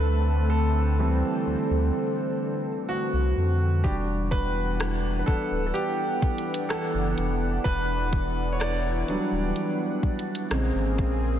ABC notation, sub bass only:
X:1
M:4/4
L:1/16
Q:1/4=63
K:Em
V:1 name="Sub bass" clef=bass
D,,6 D,, D,, z4 z C,, =F,,2 | E,,,6 D,,, D,,, z4 z F,,, =F,,,2 | E,,,6 D,,, D,,, z4 ^A,,, ^G,,, A,,,2 |]